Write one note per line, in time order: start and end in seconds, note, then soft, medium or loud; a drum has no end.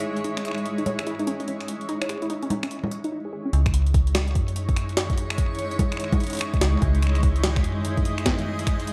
0.00 3.08 G#3 medium
0.00 3.08 D#4 medium
0.00 3.08 E4 medium
0.00 3.08 C#5 medium
0.17 closed hi-hat soft
0.24 0.35 D#4 medium
0.24 closed hi-hat medium
0.37 0.44 C#4 medium
0.37 finger snap medium
0.37 closed hi-hat soft
0.45 finger snap soft
0.45 closed hi-hat medium
0.48 finger snap soft
0.51 finger snap soft
0.55 finger snap soft
0.55 closed hi-hat soft
0.66 closed hi-hat medium
0.78 0.85 D#4 medium
0.78 closed hi-hat soft
0.86 0.97 C#5 medium
0.86 closed hi-hat medium
0.86 low conga medium
0.99 1.05 G#4 medium
0.99 finger snap medium
0.99 closed hi-hat soft
1.07 1.13 E4 loud
1.07 closed hi-hat medium
1.19 1.26 D#4 loud
1.19 closed hi-hat soft
1.27 1.33 C#4 loud
1.27 closed hi-hat medium
1.40 1.46 D#4 medium
1.40 closed hi-hat soft
1.48 1.58 C#4 medium
1.48 closed hi-hat medium
1.60 finger snap soft
1.60 closed hi-hat soft
1.68 closed hi-hat medium
1.81 closed hi-hat soft
1.89 1.99 D#4 loud
1.89 closed hi-hat medium
2.02 2.08 C#5 medium
2.02 finger snap medium
2.02 closed hi-hat soft
2.09 2.20 G#4 medium
2.09 finger snap medium
2.09 closed hi-hat medium
2.22 2.26 E4 loud
2.22 closed hi-hat soft
2.30 2.40 D#4 loud
2.30 closed hi-hat medium
2.43 2.47 C#4 loud
2.43 closed hi-hat soft
2.50 2.61 D#4 medium
2.50 closed hi-hat medium
2.50 low conga medium
2.63 2.70 C#4 medium
2.63 finger snap medium
2.63 closed hi-hat soft
2.71 closed hi-hat medium
2.84 low conga medium
2.91 closed hi-hat medium
3.04 3.11 D#4 loud
3.04 closed hi-hat soft
3.12 3.18 D#4 medium
3.25 3.31 G#4 medium
3.33 3.39 G#4 medium
3.45 3.49 C#4 medium
3.53 4.37 C#2 loud
3.53 8.93 G#3 medium
3.53 8.93 D#4 medium
3.53 8.93 E4 medium
3.53 6.79 C#5 medium
3.53 closed hi-hat medium
3.66 finger snap medium
3.66 kick loud
3.66 closed hi-hat soft
3.74 closed hi-hat medium
3.87 closed hi-hat soft
3.94 kick loud
3.94 closed hi-hat medium
4.07 closed hi-hat soft
4.15 finger snap medium
4.15 snare loud
4.15 closed hi-hat loud
4.15 low conga medium
4.28 closed hi-hat soft
4.35 6.57 F#2 medium
4.35 kick loud
4.35 closed hi-hat medium
4.48 closed hi-hat soft
4.56 closed hi-hat loud
4.69 kick loud
4.69 closed hi-hat soft
4.76 finger snap medium
4.76 closed hi-hat medium
4.89 closed hi-hat soft
4.97 snare loud
4.97 closed hi-hat loud
5.10 kick loud
5.10 closed hi-hat soft
5.18 closed hi-hat medium
5.30 finger snap medium
5.30 closed hi-hat soft
5.38 kick loud
5.38 closed hi-hat medium
5.55 closed hi-hat soft
5.59 closed hi-hat medium
5.71 closed hi-hat soft
5.79 kick loud
5.79 closed hi-hat loud
5.79 low conga medium
5.92 finger snap medium
5.92 closed hi-hat soft
5.97 finger snap soft
5.97 closed hi-hat medium
6.04 finger snap soft
6.12 kick loud
6.12 closed hi-hat soft
6.12 low conga medium
6.20 closed hi-hat soft
6.24 closed hi-hat medium
6.27 closed hi-hat medium
6.30 closed hi-hat medium
6.33 closed hi-hat medium
6.35 closed hi-hat medium
6.37 closed hi-hat medium
6.39 finger snap medium
6.39 closed hi-hat medium
6.41 closed hi-hat medium
6.54 kick loud
6.54 closed hi-hat soft
6.61 6.77 C#2 medium
6.61 snare loud
6.61 closed hi-hat loud
6.82 7.66 C#2 loud
6.82 8.93 D#5 medium
6.82 kick loud
6.82 closed hi-hat medium
6.95 closed hi-hat soft
7.02 finger snap soft
7.02 closed hi-hat medium
7.07 finger snap soft
7.09 finger snap soft
7.15 finger snap soft
7.15 closed hi-hat soft
7.20 finger snap soft
7.20 kick loud
7.20 closed hi-hat medium
7.36 closed hi-hat soft
7.44 snare loud
7.44 closed hi-hat medium
7.44 low conga medium
7.56 finger snap medium
7.56 kick loud
7.56 closed hi-hat soft
7.64 8.93 F#2 medium
7.64 closed hi-hat medium
7.85 closed hi-hat loud
7.97 kick loud
7.97 closed hi-hat soft
8.05 closed hi-hat medium
8.18 finger snap medium
8.18 closed hi-hat soft
8.26 kick loud
8.26 snare loud
8.26 closed hi-hat loud
8.39 closed hi-hat soft
8.59 closed hi-hat medium
8.67 finger snap medium
8.67 kick loud
8.67 closed hi-hat medium
8.80 closed hi-hat soft
8.87 closed hi-hat medium